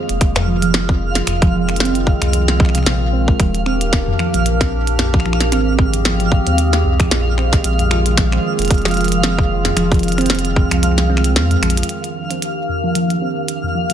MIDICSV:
0, 0, Header, 1, 6, 480
1, 0, Start_track
1, 0, Tempo, 530973
1, 1150, Time_signature, 4, 2, 24, 8
1, 12595, End_track
2, 0, Start_track
2, 0, Title_t, "Synth texture"
2, 0, Program_c, 0, 99
2, 0, Note_on_c, 0, 77, 80
2, 10740, Note_off_c, 0, 77, 0
2, 10751, Note_on_c, 0, 77, 77
2, 12595, Note_off_c, 0, 77, 0
2, 12595, End_track
3, 0, Start_track
3, 0, Title_t, "Ambient pad"
3, 0, Program_c, 1, 92
3, 0, Note_on_c, 1, 51, 78
3, 0, Note_on_c, 1, 56, 73
3, 0, Note_on_c, 1, 58, 73
3, 0, Note_on_c, 1, 65, 72
3, 0, Note_on_c, 1, 68, 88
3, 1113, Note_off_c, 1, 56, 0
3, 1130, Note_off_c, 1, 58, 0
3, 1151, Note_on_c, 1, 56, 74
3, 1151, Note_on_c, 1, 60, 73
3, 3033, Note_off_c, 1, 68, 0
3, 3034, Note_off_c, 1, 65, 0
3, 3051, Note_off_c, 1, 56, 0
3, 3051, Note_off_c, 1, 60, 0
3, 3070, Note_on_c, 1, 58, 74
3, 3070, Note_on_c, 1, 62, 73
3, 3071, Note_on_c, 1, 67, 74
3, 3071, Note_on_c, 1, 70, 85
3, 4954, Note_off_c, 1, 51, 0
3, 4971, Note_off_c, 1, 58, 0
3, 4971, Note_off_c, 1, 62, 0
3, 4971, Note_off_c, 1, 70, 0
3, 4988, Note_on_c, 1, 51, 80
3, 4988, Note_on_c, 1, 68, 88
3, 4989, Note_on_c, 1, 60, 73
3, 4990, Note_on_c, 1, 56, 74
3, 6874, Note_off_c, 1, 67, 0
3, 6890, Note_off_c, 1, 60, 0
3, 6910, Note_on_c, 1, 65, 73
3, 6911, Note_on_c, 1, 58, 72
3, 8811, Note_off_c, 1, 58, 0
3, 8829, Note_on_c, 1, 60, 73
3, 10713, Note_off_c, 1, 51, 0
3, 10713, Note_off_c, 1, 56, 0
3, 10713, Note_off_c, 1, 68, 0
3, 10714, Note_off_c, 1, 65, 0
3, 10730, Note_off_c, 1, 60, 0
3, 10749, Note_on_c, 1, 58, 68
3, 10750, Note_on_c, 1, 62, 70
3, 10750, Note_on_c, 1, 67, 69
3, 10750, Note_on_c, 1, 70, 83
3, 10751, Note_on_c, 1, 51, 76
3, 12595, Note_off_c, 1, 51, 0
3, 12595, Note_off_c, 1, 58, 0
3, 12595, Note_off_c, 1, 62, 0
3, 12595, Note_off_c, 1, 67, 0
3, 12595, Note_off_c, 1, 70, 0
3, 12595, End_track
4, 0, Start_track
4, 0, Title_t, "Synth pluck"
4, 0, Program_c, 2, 84
4, 324, Note_on_c, 2, 41, 76
4, 424, Note_off_c, 2, 41, 0
4, 428, Note_on_c, 2, 53, 72
4, 491, Note_off_c, 2, 53, 0
4, 563, Note_on_c, 2, 53, 72
4, 645, Note_off_c, 2, 53, 0
4, 803, Note_on_c, 2, 60, 76
4, 885, Note_off_c, 2, 60, 0
4, 1148, Note_on_c, 2, 41, 80
4, 1277, Note_off_c, 2, 41, 0
4, 1284, Note_on_c, 2, 53, 77
4, 1333, Note_off_c, 2, 53, 0
4, 1389, Note_on_c, 2, 53, 78
4, 1493, Note_off_c, 2, 53, 0
4, 1629, Note_on_c, 2, 60, 83
4, 1733, Note_off_c, 2, 60, 0
4, 2003, Note_on_c, 2, 41, 76
4, 2104, Note_off_c, 2, 41, 0
4, 2109, Note_on_c, 2, 53, 82
4, 2171, Note_off_c, 2, 53, 0
4, 2243, Note_on_c, 2, 53, 76
4, 2325, Note_off_c, 2, 53, 0
4, 2350, Note_on_c, 2, 53, 73
4, 2412, Note_off_c, 2, 53, 0
4, 2484, Note_on_c, 2, 48, 78
4, 2565, Note_off_c, 2, 48, 0
4, 2590, Note_on_c, 2, 60, 100
4, 2718, Note_off_c, 2, 60, 0
4, 2830, Note_on_c, 2, 60, 100
4, 2892, Note_off_c, 2, 60, 0
4, 2964, Note_on_c, 2, 56, 99
4, 3064, Note_off_c, 2, 56, 0
4, 3070, Note_on_c, 2, 53, 79
4, 3173, Note_off_c, 2, 53, 0
4, 3310, Note_on_c, 2, 60, 75
4, 3413, Note_off_c, 2, 60, 0
4, 3684, Note_on_c, 2, 41, 75
4, 3784, Note_off_c, 2, 41, 0
4, 3790, Note_on_c, 2, 53, 78
4, 3852, Note_off_c, 2, 53, 0
4, 3925, Note_on_c, 2, 53, 78
4, 4005, Note_off_c, 2, 53, 0
4, 4165, Note_on_c, 2, 60, 74
4, 4246, Note_off_c, 2, 60, 0
4, 4510, Note_on_c, 2, 41, 79
4, 4638, Note_off_c, 2, 41, 0
4, 4644, Note_on_c, 2, 53, 78
4, 4693, Note_off_c, 2, 53, 0
4, 4750, Note_on_c, 2, 53, 77
4, 4853, Note_off_c, 2, 53, 0
4, 4991, Note_on_c, 2, 60, 82
4, 5093, Note_off_c, 2, 60, 0
4, 5365, Note_on_c, 2, 41, 73
4, 5465, Note_off_c, 2, 41, 0
4, 5470, Note_on_c, 2, 53, 84
4, 5532, Note_off_c, 2, 53, 0
4, 5605, Note_on_c, 2, 53, 76
4, 5686, Note_off_c, 2, 53, 0
4, 5845, Note_on_c, 2, 60, 76
4, 5926, Note_off_c, 2, 60, 0
4, 6190, Note_on_c, 2, 41, 75
4, 6317, Note_off_c, 2, 41, 0
4, 6325, Note_on_c, 2, 53, 77
4, 6373, Note_off_c, 2, 53, 0
4, 6430, Note_on_c, 2, 53, 84
4, 6533, Note_off_c, 2, 53, 0
4, 6670, Note_on_c, 2, 60, 75
4, 6773, Note_off_c, 2, 60, 0
4, 7044, Note_on_c, 2, 41, 76
4, 7144, Note_off_c, 2, 41, 0
4, 7149, Note_on_c, 2, 53, 76
4, 7212, Note_off_c, 2, 53, 0
4, 7284, Note_on_c, 2, 53, 75
4, 7365, Note_off_c, 2, 53, 0
4, 7525, Note_on_c, 2, 60, 72
4, 7606, Note_off_c, 2, 60, 0
4, 7870, Note_on_c, 2, 41, 81
4, 7997, Note_off_c, 2, 41, 0
4, 8004, Note_on_c, 2, 53, 76
4, 8053, Note_off_c, 2, 53, 0
4, 8109, Note_on_c, 2, 53, 74
4, 8213, Note_off_c, 2, 53, 0
4, 8349, Note_on_c, 2, 60, 79
4, 8453, Note_off_c, 2, 60, 0
4, 8724, Note_on_c, 2, 41, 76
4, 8824, Note_off_c, 2, 41, 0
4, 8829, Note_on_c, 2, 53, 80
4, 8892, Note_off_c, 2, 53, 0
4, 8963, Note_on_c, 2, 53, 76
4, 9045, Note_off_c, 2, 53, 0
4, 9203, Note_on_c, 2, 60, 75
4, 9285, Note_off_c, 2, 60, 0
4, 9549, Note_on_c, 2, 41, 76
4, 9677, Note_off_c, 2, 41, 0
4, 9685, Note_on_c, 2, 53, 75
4, 9733, Note_off_c, 2, 53, 0
4, 9790, Note_on_c, 2, 53, 84
4, 9893, Note_off_c, 2, 53, 0
4, 10030, Note_on_c, 2, 60, 75
4, 10133, Note_off_c, 2, 60, 0
4, 10404, Note_on_c, 2, 41, 78
4, 10505, Note_off_c, 2, 41, 0
4, 10509, Note_on_c, 2, 53, 77
4, 10572, Note_off_c, 2, 53, 0
4, 10644, Note_on_c, 2, 53, 74
4, 10725, Note_off_c, 2, 53, 0
4, 10750, Note_on_c, 2, 53, 74
4, 10812, Note_off_c, 2, 53, 0
4, 10885, Note_on_c, 2, 53, 69
4, 10966, Note_off_c, 2, 53, 0
4, 11124, Note_on_c, 2, 60, 71
4, 11205, Note_off_c, 2, 60, 0
4, 11471, Note_on_c, 2, 41, 75
4, 11598, Note_off_c, 2, 41, 0
4, 11605, Note_on_c, 2, 53, 76
4, 11653, Note_off_c, 2, 53, 0
4, 11710, Note_on_c, 2, 53, 78
4, 11813, Note_off_c, 2, 53, 0
4, 11950, Note_on_c, 2, 60, 70
4, 12053, Note_off_c, 2, 60, 0
4, 12325, Note_on_c, 2, 41, 76
4, 12425, Note_off_c, 2, 41, 0
4, 12430, Note_on_c, 2, 53, 72
4, 12492, Note_off_c, 2, 53, 0
4, 12565, Note_on_c, 2, 53, 74
4, 12595, Note_off_c, 2, 53, 0
4, 12595, End_track
5, 0, Start_track
5, 0, Title_t, "Sub bass"
5, 0, Program_c, 3, 38
5, 85, Note_on_c, 3, 29, 86
5, 1107, Note_off_c, 3, 29, 0
5, 1150, Note_on_c, 3, 29, 77
5, 1949, Note_off_c, 3, 29, 0
5, 2003, Note_on_c, 3, 36, 85
5, 2584, Note_off_c, 3, 36, 0
5, 2589, Note_on_c, 3, 34, 93
5, 3026, Note_off_c, 3, 34, 0
5, 3070, Note_on_c, 3, 27, 94
5, 3747, Note_off_c, 3, 27, 0
5, 3926, Note_on_c, 3, 34, 80
5, 4990, Note_on_c, 3, 32, 80
5, 5003, Note_off_c, 3, 34, 0
5, 5789, Note_off_c, 3, 32, 0
5, 5845, Note_on_c, 3, 39, 83
5, 6185, Note_off_c, 3, 39, 0
5, 6190, Note_on_c, 3, 36, 87
5, 6376, Note_off_c, 3, 36, 0
5, 6430, Note_on_c, 3, 34, 90
5, 6867, Note_off_c, 3, 34, 0
5, 6909, Note_on_c, 3, 34, 97
5, 7586, Note_off_c, 3, 34, 0
5, 7764, Note_on_c, 3, 29, 81
5, 8786, Note_off_c, 3, 29, 0
5, 8829, Note_on_c, 3, 29, 81
5, 9629, Note_off_c, 3, 29, 0
5, 9683, Note_on_c, 3, 36, 82
5, 10270, Note_on_c, 3, 41, 92
5, 10284, Note_off_c, 3, 36, 0
5, 10456, Note_off_c, 3, 41, 0
5, 10509, Note_on_c, 3, 34, 98
5, 10695, Note_off_c, 3, 34, 0
5, 12595, End_track
6, 0, Start_track
6, 0, Title_t, "Drums"
6, 84, Note_on_c, 9, 42, 51
6, 175, Note_off_c, 9, 42, 0
6, 190, Note_on_c, 9, 36, 125
6, 190, Note_on_c, 9, 42, 65
6, 280, Note_off_c, 9, 42, 0
6, 281, Note_off_c, 9, 36, 0
6, 324, Note_on_c, 9, 26, 77
6, 324, Note_on_c, 9, 38, 61
6, 324, Note_on_c, 9, 42, 35
6, 415, Note_off_c, 9, 26, 0
6, 415, Note_off_c, 9, 38, 0
6, 415, Note_off_c, 9, 42, 0
6, 563, Note_on_c, 9, 42, 52
6, 654, Note_off_c, 9, 42, 0
6, 669, Note_on_c, 9, 26, 50
6, 669, Note_on_c, 9, 38, 121
6, 669, Note_on_c, 9, 42, 66
6, 759, Note_off_c, 9, 26, 0
6, 759, Note_off_c, 9, 38, 0
6, 759, Note_off_c, 9, 42, 0
6, 804, Note_on_c, 9, 36, 105
6, 895, Note_off_c, 9, 36, 0
6, 1043, Note_on_c, 9, 38, 60
6, 1043, Note_on_c, 9, 42, 54
6, 1133, Note_off_c, 9, 38, 0
6, 1133, Note_off_c, 9, 42, 0
6, 1149, Note_on_c, 9, 26, 74
6, 1149, Note_on_c, 9, 42, 62
6, 1239, Note_off_c, 9, 26, 0
6, 1239, Note_off_c, 9, 42, 0
6, 1284, Note_on_c, 9, 36, 120
6, 1284, Note_on_c, 9, 42, 35
6, 1374, Note_off_c, 9, 36, 0
6, 1374, Note_off_c, 9, 42, 0
6, 1524, Note_on_c, 9, 26, 48
6, 1524, Note_on_c, 9, 42, 22
6, 1594, Note_off_c, 9, 42, 0
6, 1594, Note_on_c, 9, 42, 30
6, 1614, Note_off_c, 9, 26, 0
6, 1630, Note_off_c, 9, 42, 0
6, 1630, Note_on_c, 9, 38, 117
6, 1630, Note_on_c, 9, 42, 63
6, 1675, Note_off_c, 9, 42, 0
6, 1675, Note_on_c, 9, 42, 41
6, 1720, Note_off_c, 9, 38, 0
6, 1765, Note_off_c, 9, 42, 0
6, 1765, Note_on_c, 9, 42, 35
6, 1855, Note_off_c, 9, 42, 0
6, 1869, Note_on_c, 9, 36, 104
6, 1960, Note_off_c, 9, 36, 0
6, 2004, Note_on_c, 9, 26, 70
6, 2004, Note_on_c, 9, 42, 49
6, 2094, Note_off_c, 9, 26, 0
6, 2094, Note_off_c, 9, 42, 0
6, 2110, Note_on_c, 9, 42, 61
6, 2201, Note_off_c, 9, 42, 0
6, 2244, Note_on_c, 9, 38, 61
6, 2244, Note_on_c, 9, 42, 36
6, 2335, Note_off_c, 9, 38, 0
6, 2335, Note_off_c, 9, 42, 0
6, 2349, Note_on_c, 9, 36, 120
6, 2350, Note_on_c, 9, 26, 46
6, 2395, Note_off_c, 9, 26, 0
6, 2395, Note_on_c, 9, 26, 38
6, 2430, Note_off_c, 9, 26, 0
6, 2430, Note_on_c, 9, 26, 30
6, 2440, Note_off_c, 9, 36, 0
6, 2484, Note_off_c, 9, 26, 0
6, 2484, Note_on_c, 9, 26, 26
6, 2484, Note_on_c, 9, 42, 52
6, 2510, Note_off_c, 9, 26, 0
6, 2510, Note_on_c, 9, 26, 21
6, 2555, Note_off_c, 9, 26, 0
6, 2555, Note_on_c, 9, 26, 17
6, 2575, Note_off_c, 9, 42, 0
6, 2590, Note_on_c, 9, 38, 124
6, 2590, Note_on_c, 9, 42, 64
6, 2645, Note_off_c, 9, 26, 0
6, 2680, Note_off_c, 9, 38, 0
6, 2680, Note_off_c, 9, 42, 0
6, 2964, Note_on_c, 9, 36, 102
6, 3055, Note_off_c, 9, 36, 0
6, 3070, Note_on_c, 9, 36, 101
6, 3070, Note_on_c, 9, 42, 59
6, 3160, Note_off_c, 9, 36, 0
6, 3161, Note_off_c, 9, 42, 0
6, 3205, Note_on_c, 9, 42, 34
6, 3296, Note_off_c, 9, 42, 0
6, 3311, Note_on_c, 9, 26, 50
6, 3401, Note_off_c, 9, 26, 0
6, 3445, Note_on_c, 9, 42, 50
6, 3536, Note_off_c, 9, 42, 0
6, 3550, Note_on_c, 9, 36, 115
6, 3550, Note_on_c, 9, 38, 111
6, 3550, Note_on_c, 9, 42, 60
6, 3640, Note_off_c, 9, 36, 0
6, 3641, Note_off_c, 9, 38, 0
6, 3641, Note_off_c, 9, 42, 0
6, 3790, Note_on_c, 9, 26, 70
6, 3881, Note_off_c, 9, 26, 0
6, 3925, Note_on_c, 9, 42, 48
6, 4015, Note_off_c, 9, 42, 0
6, 4031, Note_on_c, 9, 42, 63
6, 4121, Note_off_c, 9, 42, 0
6, 4165, Note_on_c, 9, 36, 97
6, 4166, Note_on_c, 9, 26, 49
6, 4166, Note_on_c, 9, 38, 59
6, 4166, Note_on_c, 9, 42, 35
6, 4255, Note_off_c, 9, 36, 0
6, 4256, Note_off_c, 9, 26, 0
6, 4256, Note_off_c, 9, 38, 0
6, 4256, Note_off_c, 9, 42, 0
6, 4406, Note_on_c, 9, 42, 49
6, 4496, Note_off_c, 9, 42, 0
6, 4511, Note_on_c, 9, 38, 115
6, 4511, Note_on_c, 9, 42, 62
6, 4601, Note_off_c, 9, 38, 0
6, 4601, Note_off_c, 9, 42, 0
6, 4645, Note_on_c, 9, 36, 115
6, 4646, Note_on_c, 9, 26, 34
6, 4699, Note_off_c, 9, 26, 0
6, 4699, Note_on_c, 9, 26, 44
6, 4735, Note_off_c, 9, 36, 0
6, 4751, Note_off_c, 9, 26, 0
6, 4751, Note_on_c, 9, 26, 52
6, 4819, Note_off_c, 9, 26, 0
6, 4819, Note_on_c, 9, 26, 61
6, 4886, Note_on_c, 9, 38, 59
6, 4886, Note_on_c, 9, 42, 49
6, 4909, Note_off_c, 9, 26, 0
6, 4977, Note_off_c, 9, 38, 0
6, 4977, Note_off_c, 9, 42, 0
6, 4991, Note_on_c, 9, 26, 52
6, 4991, Note_on_c, 9, 42, 64
6, 5082, Note_off_c, 9, 26, 0
6, 5082, Note_off_c, 9, 42, 0
6, 5230, Note_on_c, 9, 36, 100
6, 5321, Note_off_c, 9, 36, 0
6, 5366, Note_on_c, 9, 42, 49
6, 5456, Note_off_c, 9, 42, 0
6, 5471, Note_on_c, 9, 26, 77
6, 5471, Note_on_c, 9, 38, 115
6, 5471, Note_on_c, 9, 42, 59
6, 5561, Note_off_c, 9, 26, 0
6, 5561, Note_off_c, 9, 38, 0
6, 5561, Note_off_c, 9, 42, 0
6, 5605, Note_on_c, 9, 42, 34
6, 5695, Note_off_c, 9, 42, 0
6, 5710, Note_on_c, 9, 36, 106
6, 5801, Note_off_c, 9, 36, 0
6, 5845, Note_on_c, 9, 42, 48
6, 5936, Note_off_c, 9, 42, 0
6, 5950, Note_on_c, 9, 42, 62
6, 6041, Note_off_c, 9, 42, 0
6, 6086, Note_on_c, 9, 38, 59
6, 6086, Note_on_c, 9, 42, 34
6, 6176, Note_off_c, 9, 38, 0
6, 6176, Note_off_c, 9, 42, 0
6, 6324, Note_on_c, 9, 36, 105
6, 6325, Note_on_c, 9, 26, 76
6, 6325, Note_on_c, 9, 42, 49
6, 6415, Note_off_c, 9, 36, 0
6, 6416, Note_off_c, 9, 26, 0
6, 6416, Note_off_c, 9, 42, 0
6, 6431, Note_on_c, 9, 38, 112
6, 6431, Note_on_c, 9, 42, 63
6, 6521, Note_off_c, 9, 38, 0
6, 6521, Note_off_c, 9, 42, 0
6, 6670, Note_on_c, 9, 26, 50
6, 6760, Note_off_c, 9, 26, 0
6, 6804, Note_on_c, 9, 36, 109
6, 6805, Note_on_c, 9, 38, 57
6, 6805, Note_on_c, 9, 42, 48
6, 6894, Note_off_c, 9, 36, 0
6, 6895, Note_off_c, 9, 38, 0
6, 6895, Note_off_c, 9, 42, 0
6, 6910, Note_on_c, 9, 42, 65
6, 7000, Note_off_c, 9, 42, 0
6, 7044, Note_on_c, 9, 42, 36
6, 7135, Note_off_c, 9, 42, 0
6, 7150, Note_on_c, 9, 26, 81
6, 7241, Note_off_c, 9, 26, 0
6, 7284, Note_on_c, 9, 42, 49
6, 7375, Note_off_c, 9, 42, 0
6, 7390, Note_on_c, 9, 36, 100
6, 7390, Note_on_c, 9, 38, 107
6, 7390, Note_on_c, 9, 42, 62
6, 7480, Note_off_c, 9, 36, 0
6, 7481, Note_off_c, 9, 38, 0
6, 7481, Note_off_c, 9, 42, 0
6, 7524, Note_on_c, 9, 26, 53
6, 7615, Note_off_c, 9, 26, 0
6, 7764, Note_on_c, 9, 42, 47
6, 7791, Note_off_c, 9, 42, 0
6, 7791, Note_on_c, 9, 42, 38
6, 7818, Note_off_c, 9, 42, 0
6, 7818, Note_on_c, 9, 42, 31
6, 7844, Note_off_c, 9, 42, 0
6, 7844, Note_on_c, 9, 42, 27
6, 7870, Note_off_c, 9, 42, 0
6, 7870, Note_on_c, 9, 36, 111
6, 7870, Note_on_c, 9, 42, 63
6, 7937, Note_off_c, 9, 42, 0
6, 7937, Note_on_c, 9, 42, 15
6, 7960, Note_off_c, 9, 36, 0
6, 7970, Note_off_c, 9, 42, 0
6, 7970, Note_on_c, 9, 42, 12
6, 8003, Note_off_c, 9, 42, 0
6, 8003, Note_on_c, 9, 26, 80
6, 8003, Note_on_c, 9, 38, 58
6, 8003, Note_on_c, 9, 42, 16
6, 8030, Note_off_c, 9, 42, 0
6, 8030, Note_on_c, 9, 42, 17
6, 8056, Note_off_c, 9, 42, 0
6, 8056, Note_on_c, 9, 42, 20
6, 8082, Note_off_c, 9, 42, 0
6, 8082, Note_on_c, 9, 42, 22
6, 8094, Note_off_c, 9, 26, 0
6, 8094, Note_off_c, 9, 38, 0
6, 8109, Note_off_c, 9, 42, 0
6, 8109, Note_on_c, 9, 42, 25
6, 8142, Note_off_c, 9, 42, 0
6, 8142, Note_on_c, 9, 42, 27
6, 8176, Note_off_c, 9, 42, 0
6, 8176, Note_on_c, 9, 42, 28
6, 8210, Note_off_c, 9, 42, 0
6, 8210, Note_on_c, 9, 42, 31
6, 8244, Note_off_c, 9, 42, 0
6, 8244, Note_on_c, 9, 42, 51
6, 8334, Note_off_c, 9, 42, 0
6, 8348, Note_on_c, 9, 26, 52
6, 8348, Note_on_c, 9, 38, 111
6, 8348, Note_on_c, 9, 42, 64
6, 8439, Note_off_c, 9, 26, 0
6, 8439, Note_off_c, 9, 38, 0
6, 8439, Note_off_c, 9, 42, 0
6, 8484, Note_on_c, 9, 36, 96
6, 8574, Note_off_c, 9, 36, 0
6, 8723, Note_on_c, 9, 38, 56
6, 8723, Note_on_c, 9, 42, 49
6, 8813, Note_off_c, 9, 38, 0
6, 8813, Note_off_c, 9, 42, 0
6, 8829, Note_on_c, 9, 26, 82
6, 8829, Note_on_c, 9, 42, 66
6, 8919, Note_off_c, 9, 26, 0
6, 8919, Note_off_c, 9, 42, 0
6, 8964, Note_on_c, 9, 36, 115
6, 8964, Note_on_c, 9, 42, 16
6, 8989, Note_off_c, 9, 42, 0
6, 8989, Note_on_c, 9, 42, 20
6, 9034, Note_off_c, 9, 42, 0
6, 9034, Note_on_c, 9, 42, 23
6, 9054, Note_off_c, 9, 36, 0
6, 9069, Note_off_c, 9, 42, 0
6, 9069, Note_on_c, 9, 42, 26
6, 9115, Note_off_c, 9, 42, 0
6, 9115, Note_on_c, 9, 42, 28
6, 9149, Note_off_c, 9, 42, 0
6, 9149, Note_on_c, 9, 42, 32
6, 9203, Note_off_c, 9, 42, 0
6, 9203, Note_on_c, 9, 26, 53
6, 9203, Note_on_c, 9, 42, 22
6, 9230, Note_off_c, 9, 42, 0
6, 9230, Note_on_c, 9, 42, 28
6, 9274, Note_off_c, 9, 42, 0
6, 9274, Note_on_c, 9, 42, 32
6, 9294, Note_off_c, 9, 26, 0
6, 9309, Note_off_c, 9, 42, 0
6, 9309, Note_on_c, 9, 38, 111
6, 9309, Note_on_c, 9, 42, 68
6, 9354, Note_off_c, 9, 42, 0
6, 9354, Note_on_c, 9, 42, 40
6, 9390, Note_off_c, 9, 42, 0
6, 9390, Note_on_c, 9, 42, 47
6, 9400, Note_off_c, 9, 38, 0
6, 9444, Note_off_c, 9, 42, 0
6, 9444, Note_on_c, 9, 42, 38
6, 9535, Note_off_c, 9, 42, 0
6, 9550, Note_on_c, 9, 36, 101
6, 9640, Note_off_c, 9, 36, 0
6, 9685, Note_on_c, 9, 26, 81
6, 9685, Note_on_c, 9, 42, 53
6, 9776, Note_off_c, 9, 26, 0
6, 9776, Note_off_c, 9, 42, 0
6, 9790, Note_on_c, 9, 42, 67
6, 9881, Note_off_c, 9, 42, 0
6, 9925, Note_on_c, 9, 38, 57
6, 9925, Note_on_c, 9, 42, 37
6, 10015, Note_off_c, 9, 38, 0
6, 10015, Note_off_c, 9, 42, 0
6, 10097, Note_on_c, 9, 26, 53
6, 10165, Note_on_c, 9, 42, 55
6, 10188, Note_off_c, 9, 26, 0
6, 10255, Note_off_c, 9, 42, 0
6, 10270, Note_on_c, 9, 38, 114
6, 10270, Note_on_c, 9, 42, 65
6, 10361, Note_off_c, 9, 38, 0
6, 10361, Note_off_c, 9, 42, 0
6, 10405, Note_on_c, 9, 42, 37
6, 10495, Note_off_c, 9, 42, 0
6, 10510, Note_on_c, 9, 26, 84
6, 10510, Note_on_c, 9, 42, 55
6, 10577, Note_off_c, 9, 42, 0
6, 10577, Note_on_c, 9, 42, 63
6, 10601, Note_off_c, 9, 26, 0
6, 10644, Note_off_c, 9, 42, 0
6, 10644, Note_on_c, 9, 42, 74
6, 10697, Note_off_c, 9, 42, 0
6, 10697, Note_on_c, 9, 42, 84
6, 10751, Note_off_c, 9, 42, 0
6, 10751, Note_on_c, 9, 42, 60
6, 10841, Note_off_c, 9, 42, 0
6, 10885, Note_on_c, 9, 42, 34
6, 10975, Note_off_c, 9, 42, 0
6, 11124, Note_on_c, 9, 42, 49
6, 11215, Note_off_c, 9, 42, 0
6, 11230, Note_on_c, 9, 42, 64
6, 11321, Note_off_c, 9, 42, 0
6, 11710, Note_on_c, 9, 42, 64
6, 11800, Note_off_c, 9, 42, 0
6, 11845, Note_on_c, 9, 42, 35
6, 11936, Note_off_c, 9, 42, 0
6, 12190, Note_on_c, 9, 42, 63
6, 12280, Note_off_c, 9, 42, 0
6, 12564, Note_on_c, 9, 42, 49
6, 12595, Note_off_c, 9, 42, 0
6, 12595, End_track
0, 0, End_of_file